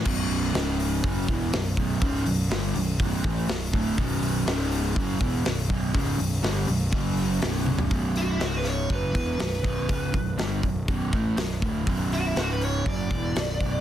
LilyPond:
<<
  \new Staff \with { instrumentName = "Lead electric guitar" } { \time 4/4 \key b \minor \tempo 4 = 122 r1 | r1 | r1 | r1 |
r8 fis'16 e'16 fis'16 b'16 cis''8 b'2~ | b'4 r2. | r8 fis'16 e'16 fis'16 b'16 cis''8 d''2 | }
  \new Staff \with { instrumentName = "Overdriven electric guitar" } { \clef bass \time 4/4 \key b \minor <b,, fis, b,>4 <cis, gis, cis>4 <fis, cis fis>8 <e, b, e>8 <b,, fis,>8 <b,, fis, b,>8 | <cis, gis, cis>8 <b,, fis,>8 <g, d g>8 <b,, fis,>8 <b,, fis, b,>8 <a, e a>8 <b,, fis,>8 <d, a, d>8 | <b,, fis, b,>4 <cis, gis, cis>4 <fis, cis fis>8 <e, b, e>8 <b,, fis,>8 <b,, fis, b,>8 | <cis, gis, cis>8 <b,, fis,>8 <g, d g>8 <b,, fis,>8 <fis, cis fis>4 <b,, fis, b,>4 |
<b,, fis, b,>4 <cis, gis, cis>4 <fis, cis fis>8 <e, b, e>8 <b,, fis,>8 <b,, fis, b,>8 | <cis, gis, cis>8 <b,, fis,>8 <g, d g>8 <b,, fis,>8 <b,, fis, b,>8 <a, e a>8 <b,, fis,>8 <d, a, d>8 | <b,, fis, b,>4 <cis, gis, cis>4 <fis, cis fis>8 <e, b, e>8 <b,, fis,>8 <b,, fis, b,>8 | }
  \new Staff \with { instrumentName = "Picked electric bass" } { \clef bass \time 4/4 \key b \minor b,,,4 cis,,4 fis,,8 e,,8 b,,,8 b,,,8 | cis,,8 b,,,8 g,,8 b,,,8 b,,,8 a,,8 b,,,8 d,,8 | b,,,4 cis,,4 fis,,8 e,,8 b,,,8 b,,,8 | cis,,8 b,,,8 g,,8 b,,,8 fis,,4 b,,,4 |
b,,,4 cis,,4 fis,,8 e,,8 b,,,8 b,,,8 | cis,,8 b,,,8 g,,8 b,,,8 b,,,8 a,,8 b,,,8 d,,8 | b,,,4 cis,,4 fis,,8 e,,8 b,,,8 b,,,8 | }
  \new DrumStaff \with { instrumentName = "Drums" } \drummode { \time 4/4 <cymc bd>8 hho8 <hho sn>8 hho8 <hho bd>8 <hho bd>8 <hho sn>8 <hho bd>8 | <hho bd>8 hho8 <hho sn>8 hho8 <hho bd>8 <hho bd>8 <hho sn>8 <hho bd>8 | <hho bd>8 hho8 <hho sn>8 hho8 <hho bd>8 <hho bd>8 <hho sn>8 bd8 | <hho bd>8 hho8 <hho sn>8 hho8 <hho bd>8 hho8 <hho sn>8 tommh16 tomfh16 |
<hho bd>8 hho8 <hho sn>8 hho8 <hho bd>8 <hho bd>8 <hho sn>16 sn16 <hho bd>8 | <hho bd>8 <hho bd>8 <hho sn>8 <hho bd>8 <hho bd>8 <hho bd>8 <hho sn>16 sn16 <hho bd>8 | <hho bd>8 hho8 <hho sn>8 hho8 <hho bd>8 <hho bd>8 <hho sn>16 sn16 <hho bd>8 | }
>>